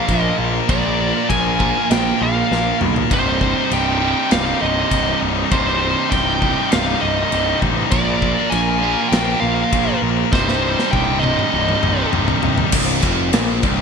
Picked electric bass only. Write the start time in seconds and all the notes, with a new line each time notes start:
0.09 A#1
0.39 A#1
0.70 A#1
1.30 A#1
1.91 A#1
2.21 A#1
2.51 A#1
2.81 B1
3.11 C1
3.71 C1
4.32 C1
4.62 C1
4.92 C1
5.22 C1
5.52 C1
6.12 C1
6.73 C1
7.03 C1
7.32 C1
7.63 A1
7.92 A#1
8.52 A#1
9.12 A#1
9.42 A#1
9.73 A#1
10.02 A#1
10.33 C1
10.93 C1
11.54 C1
11.84 C1
12.13 C1
12.43 C1
12.73 C1
13.03 F1
13.33 A#1
13.63 C1